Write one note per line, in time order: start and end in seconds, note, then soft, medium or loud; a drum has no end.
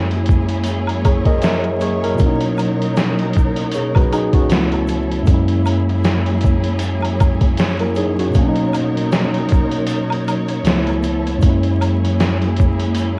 0.00 2.13 F#2 medium
0.00 4.46 F#3 medium
0.00 2.15 G#3 medium
0.00 2.16 A#3 medium
0.00 2.18 C#4 medium
0.00 1.04 E4 medium
0.00 2.16 E4 medium
0.00 2.16 G#4 medium
0.00 4.46 C#5 medium
0.11 closed hi-hat soft
0.26 kick medium
0.26 closed hi-hat medium
0.30 shaker medium
0.49 closed hi-hat medium
0.64 closed hi-hat medium
0.64 shaker medium
0.87 closed hi-hat soft
0.87 high woodblock medium
1.05 1.25 G#4 medium
1.05 1.25 C#5 medium
1.05 kick medium
1.05 closed hi-hat medium
1.05 high woodblock medium
1.05 shaker medium
1.25 1.43 A#4 medium
1.25 1.42 D#5 medium
1.25 kick medium
1.25 closed hi-hat soft
1.42 1.80 A#4 medium
1.42 1.80 E5 medium
1.42 snare loud
1.42 closed hi-hat medium
1.42 shaker medium
1.64 closed hi-hat soft
1.64 high woodblock soft
1.80 2.02 G#4 medium
1.80 2.02 C#5 medium
1.80 closed hi-hat medium
1.80 shaker medium
2.04 2.40 E4 medium
2.04 2.40 A#4 medium
2.04 closed hi-hat soft
2.15 4.44 B2 medium
2.15 4.45 F#3 medium
2.15 shaker medium
2.19 5.24 B2 medium
2.19 4.47 A#3 medium
2.19 4.48 D#4 medium
2.19 4.48 A#4 medium
2.19 kick medium
2.19 closed hi-hat medium
2.23 3.72 C#4 medium
2.23 3.74 D#4 medium
2.40 closed hi-hat soft
2.58 closed hi-hat medium
2.58 high woodblock medium
2.58 shaker soft
2.82 closed hi-hat soft
2.97 snare loud
2.97 closed hi-hat medium
2.97 shaker medium
3.19 closed hi-hat soft
3.33 kick medium
3.33 closed hi-hat medium
3.38 shaker medium
3.56 closed hi-hat medium
3.71 3.95 G#4 medium
3.71 3.94 C#5 medium
3.71 closed hi-hat loud
3.71 shaker medium
3.95 4.12 F#4 medium
3.95 4.11 B4 medium
3.95 kick loud
3.95 closed hi-hat soft
3.95 high woodblock medium
4.13 4.33 D#4 medium
4.13 4.33 G#4 medium
4.13 closed hi-hat medium
4.13 high woodblock medium
4.13 shaker medium
4.33 4.71 C#4 medium
4.33 4.70 F#4 medium
4.33 kick medium
4.33 closed hi-hat medium
4.48 5.26 C#2 medium
4.48 5.27 F3 medium
4.48 5.26 F3 medium
4.48 5.27 A3 medium
4.48 8.31 E4 medium
4.48 5.26 A4 medium
4.48 5.26 C#5 medium
4.48 snare loud
4.48 closed hi-hat medium
4.48 shaker medium
4.53 5.28 B3 medium
4.53 5.29 E4 medium
4.72 closed hi-hat soft
4.72 high woodblock soft
4.88 closed hi-hat medium
4.88 shaker medium
5.12 closed hi-hat soft
5.22 8.29 F#2 medium
5.22 8.30 G#3 medium
5.22 shaker medium
5.27 10.62 F#3 medium
5.27 5.35 A3 medium
5.27 8.32 A#3 medium
5.27 8.32 G#4 medium
5.27 13.19 C#5 medium
5.27 kick medium
5.27 closed hi-hat medium
5.31 8.35 A#3 medium
5.31 7.56 C#4 medium
5.31 7.57 E4 medium
5.48 closed hi-hat soft
5.66 closed hi-hat medium
5.66 high woodblock medium
5.66 shaker soft
5.89 closed hi-hat soft
6.04 snare medium
6.04 closed hi-hat medium
6.04 shaker medium
6.26 closed hi-hat soft
6.41 kick medium
6.41 closed hi-hat medium
6.45 shaker soft
6.64 closed hi-hat medium
6.79 closed hi-hat medium
6.79 shaker medium
7.02 closed hi-hat soft
7.02 high woodblock medium
7.20 kick medium
7.20 closed hi-hat medium
7.20 high woodblock medium
7.20 shaker medium
7.41 kick medium
7.41 closed hi-hat medium
7.57 snare loud
7.57 closed hi-hat medium
7.57 shaker medium
7.79 7.96 E4 soft
7.79 7.96 A#4 medium
7.79 closed hi-hat soft
7.79 high woodblock soft
7.95 8.18 D#4 medium
7.95 8.18 G#4 medium
7.95 closed hi-hat medium
7.95 shaker soft
8.19 8.37 C#4 medium
8.19 8.55 F#4 medium
8.19 closed hi-hat soft
8.30 10.59 B2 medium
8.30 10.61 F#3 medium
8.30 shaker medium
8.35 10.64 B2 medium
8.35 10.62 A#3 medium
8.35 10.64 C#4 medium
8.35 10.63 D#4 medium
8.35 10.64 A#4 medium
8.35 kick medium
8.35 closed hi-hat medium
8.42 8.46 D4 medium
8.48 10.68 D#4 medium
8.56 closed hi-hat soft
8.73 closed hi-hat medium
8.73 high woodblock medium
8.73 shaker soft
8.97 closed hi-hat medium
9.12 snare loud
9.12 closed hi-hat medium
9.12 shaker medium
9.34 closed hi-hat soft
9.49 kick medium
9.49 closed hi-hat medium
9.53 shaker medium
9.71 closed hi-hat medium
9.87 closed hi-hat loud
9.87 shaker medium
10.10 closed hi-hat soft
10.10 high woodblock medium
10.28 closed hi-hat medium
10.28 high woodblock medium
10.28 shaker medium
10.48 closed hi-hat soft
10.64 11.42 C#2 medium
10.64 11.42 F3 medium
10.64 11.43 A3 medium
10.64 11.42 B3 medium
10.64 11.41 E4 medium
10.64 11.42 A4 medium
10.64 snare loud
10.64 closed hi-hat medium
10.64 shaker medium
10.68 11.44 B3 medium
10.68 11.45 E4 medium
10.87 closed hi-hat soft
10.87 high woodblock soft
11.03 closed hi-hat medium
11.03 shaker soft
11.27 closed hi-hat soft
11.38 13.19 F#2 medium
11.38 13.19 G#3 medium
11.38 shaker medium
11.43 13.19 F#3 medium
11.43 13.19 A#3 medium
11.43 13.19 E4 medium
11.43 13.19 G#4 medium
11.43 kick medium
11.43 closed hi-hat medium
11.47 13.19 C#4 medium
11.47 13.19 E4 medium
11.63 closed hi-hat soft
11.81 closed hi-hat medium
11.81 high woodblock medium
11.81 shaker soft
12.05 closed hi-hat soft
12.20 snare loud
12.20 closed hi-hat medium
12.20 shaker medium
12.42 closed hi-hat soft
12.57 kick medium
12.57 closed hi-hat medium
12.61 shaker medium
12.79 closed hi-hat medium
12.94 closed hi-hat medium
12.94 shaker medium